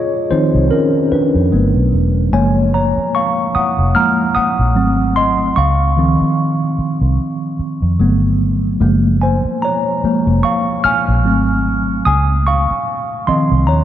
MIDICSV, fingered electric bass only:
0, 0, Header, 1, 3, 480
1, 0, Start_track
1, 0, Key_signature, -5, "major"
1, 0, Tempo, 810811
1, 1375, Time_signature, 4, 2, 24, 8
1, 8193, End_track
2, 0, Start_track
2, 0, Title_t, "Fingered electric bass"
2, 0, Program_c, 0, 33
2, 323, Note_on_c, 0, 36, 97
2, 410, Note_off_c, 0, 36, 0
2, 800, Note_on_c, 0, 41, 73
2, 888, Note_off_c, 0, 41, 0
2, 900, Note_on_c, 0, 31, 84
2, 1025, Note_off_c, 0, 31, 0
2, 1041, Note_on_c, 0, 35, 75
2, 1129, Note_off_c, 0, 35, 0
2, 1142, Note_on_c, 0, 28, 78
2, 1356, Note_off_c, 0, 28, 0
2, 1378, Note_on_c, 0, 30, 92
2, 1733, Note_off_c, 0, 30, 0
2, 2242, Note_on_c, 0, 29, 78
2, 2329, Note_off_c, 0, 29, 0
2, 2718, Note_on_c, 0, 34, 77
2, 2819, Note_off_c, 0, 34, 0
2, 2819, Note_on_c, 0, 32, 86
2, 3273, Note_off_c, 0, 32, 0
2, 3299, Note_on_c, 0, 37, 97
2, 3653, Note_off_c, 0, 37, 0
2, 4152, Note_on_c, 0, 36, 84
2, 4244, Note_off_c, 0, 36, 0
2, 4631, Note_on_c, 0, 41, 78
2, 4731, Note_on_c, 0, 31, 91
2, 4740, Note_off_c, 0, 41, 0
2, 5189, Note_off_c, 0, 31, 0
2, 5215, Note_on_c, 0, 30, 108
2, 5571, Note_off_c, 0, 30, 0
2, 6079, Note_on_c, 0, 29, 92
2, 6168, Note_off_c, 0, 29, 0
2, 6562, Note_on_c, 0, 34, 82
2, 6661, Note_off_c, 0, 34, 0
2, 6661, Note_on_c, 0, 32, 89
2, 7114, Note_off_c, 0, 32, 0
2, 7142, Note_on_c, 0, 37, 106
2, 7495, Note_off_c, 0, 37, 0
2, 8002, Note_on_c, 0, 36, 84
2, 8102, Note_off_c, 0, 36, 0
2, 8102, Note_on_c, 0, 39, 86
2, 8193, Note_off_c, 0, 39, 0
2, 8193, End_track
3, 0, Start_track
3, 0, Title_t, "Muted fingered electric bass strokes"
3, 185, Note_on_c, 9, 29, 43
3, 244, Note_off_c, 9, 29, 0
3, 662, Note_on_c, 9, 29, 43
3, 721, Note_off_c, 9, 29, 0
3, 1761, Note_on_c, 9, 29, 47
3, 1820, Note_off_c, 9, 29, 0
3, 2104, Note_on_c, 9, 29, 48
3, 2164, Note_off_c, 9, 29, 0
3, 2582, Note_on_c, 9, 29, 50
3, 2642, Note_off_c, 9, 29, 0
3, 3677, Note_on_c, 9, 29, 43
3, 3736, Note_off_c, 9, 29, 0
3, 4016, Note_on_c, 9, 29, 47
3, 4076, Note_off_c, 9, 29, 0
3, 4495, Note_on_c, 9, 29, 42
3, 4554, Note_off_c, 9, 29, 0
3, 5595, Note_on_c, 9, 29, 50
3, 5654, Note_off_c, 9, 29, 0
3, 5942, Note_on_c, 9, 29, 46
3, 6001, Note_off_c, 9, 29, 0
3, 6420, Note_on_c, 9, 29, 49
3, 6479, Note_off_c, 9, 29, 0
3, 7523, Note_on_c, 9, 29, 47
3, 7582, Note_off_c, 9, 29, 0
3, 7864, Note_on_c, 9, 29, 48
3, 7923, Note_off_c, 9, 29, 0
3, 8193, End_track
0, 0, End_of_file